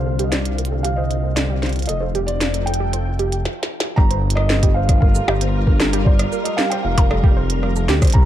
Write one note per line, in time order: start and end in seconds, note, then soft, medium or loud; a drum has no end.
0.00 1.86 C2 medium
0.00 1.89 C3 medium
0.00 1.89 D3 medium
0.00 3.45 C4 medium
0.00 3.45 F4 medium
0.00 1.89 A#4 medium
0.00 0.22 C5 medium
0.00 2.72 F5 medium
0.00 3.45 F5 medium
0.06 0.11 A4 medium
0.19 0.24 G4 medium
0.19 closed hi-hat soft
0.24 0.32 D#5 medium
0.31 0.44 C5 medium
0.31 0.85 D5 medium
0.31 snare loud
0.31 closed hi-hat medium
0.45 closed hi-hat soft
0.58 0.70 A#4 medium
0.58 closed hi-hat soft
0.65 closed hi-hat medium
0.72 0.76 A4 medium
0.83 0.89 G4 loud
0.83 0.97 F5 medium
0.83 closed hi-hat medium
0.96 1.09 C5 medium
0.96 1.37 D#5 medium
1.11 closed hi-hat soft
1.24 1.35 A#4 medium
1.35 1.41 A4 medium
1.35 1.72 D5 medium
1.35 snare loud
1.35 closed hi-hat medium
1.50 1.54 G4 medium
1.63 1.74 C5 medium
1.63 snare medium
1.63 closed hi-hat soft
1.66 closed hi-hat soft
1.69 closed hi-hat soft
1.73 closed hi-hat soft
1.76 closed hi-hat soft
1.79 closed hi-hat soft
1.82 closed hi-hat soft
1.86 2.00 D#5 medium
1.86 closed hi-hat soft
1.89 3.45 F1 medium
1.89 3.45 F3 medium
1.89 2.00 A4 medium
1.89 closed hi-hat medium
2.00 2.07 A4 medium
2.00 2.06 C5 medium
2.05 3.45 D#4 medium
2.15 2.20 G4 loud
2.15 closed hi-hat soft
2.27 2.40 C5 medium
2.27 2.64 D5 loud
2.27 closed hi-hat soft
2.31 3.45 G5 medium
2.36 3.45 A4 medium
2.41 snare loud
2.41 closed hi-hat medium
2.54 2.66 A4 medium
2.54 closed hi-hat soft
2.66 2.72 A4 medium
2.66 3.41 G5 medium
2.66 closed hi-hat soft
2.74 closed hi-hat medium
2.80 2.85 G4 loud
2.93 3.05 C5 medium
2.93 closed hi-hat medium
3.19 3.31 G4 loud
3.19 closed hi-hat soft
3.32 3.44 G5 medium
3.32 closed hi-hat soft
3.45 snare medium
3.63 snare medium
3.80 snare medium
3.96 5.21 G1 loud
3.96 8.15 G3 medium
3.96 4.02 G4 loud
3.96 4.33 A#5 loud
3.96 kick loud
3.96 cross-stick medium
4.11 8.25 F4 medium
4.11 4.22 C5 medium
4.11 closed hi-hat medium
4.30 closed hi-hat medium
4.35 4.48 A#4 medium
4.35 4.72 D#5 loud
4.35 cross-stick medium
4.40 8.25 A#4 medium
4.50 4.54 A4 medium
4.50 snare loud
4.63 4.67 G4 loud
4.63 kick medium
4.63 closed hi-hat medium
4.74 4.87 C5 medium
4.74 4.99 F5 medium
4.89 kick loud
4.89 cross-stick medium
4.89 closed hi-hat medium
5.00 5.13 A#4 medium
5.00 5.75 F5 medium
5.00 kick loud
5.15 5.20 A4 medium
5.15 shaker medium
5.28 6.25 G1 medium
5.28 5.33 G4 loud
5.28 cross-stick medium
5.28 percussion blips medium
5.41 5.53 C5 medium
5.41 closed hi-hat medium
5.67 5.79 A#4 medium
5.67 kick medium
5.80 5.85 A4 medium
5.80 cross-stick medium
5.80 snare loud
5.93 5.98 G4 loud
5.93 closed hi-hat medium
6.05 6.18 C5 medium
6.05 6.46 D5 medium
6.05 kick loud
6.19 cross-stick medium
6.19 closed hi-hat medium
6.32 6.44 A#4 medium
6.32 shaker medium
6.44 6.50 A4 medium
6.44 6.57 D#5 medium
6.44 closed hi-hat medium
6.57 6.63 G4 loud
6.57 6.70 F5 loud
6.57 snare loud
6.70 6.83 C5 medium
6.70 6.83 G5 loud
6.70 cross-stick medium
6.70 closed hi-hat medium
6.83 7.88 F1 medium
6.83 7.84 F5 loud
6.98 7.09 A#4 medium
6.98 kick loud
6.98 closed hi-hat medium
6.98 percussion blips medium
7.11 7.15 A4 medium
7.11 cross-stick medium
7.24 7.28 G4 loud
7.24 kick loud
7.37 7.48 C5 medium
7.50 closed hi-hat medium
7.63 7.74 A#4 medium
7.63 cross-stick medium
7.76 7.80 A4 medium
7.76 shaker medium
7.89 8.06 D2 medium
7.89 7.93 G4 loud
7.89 snare loud
8.02 8.13 C5 medium
8.02 kick loud
8.02 cross-stick medium
8.02 closed hi-hat soft
8.02 shaker medium
8.05 closed hi-hat soft
8.07 closed hi-hat soft
8.10 closed hi-hat medium
8.12 8.25 C2 loud
8.12 8.25 C3 medium
8.12 8.25 A#5 loud
8.12 kick loud
8.12 closed hi-hat medium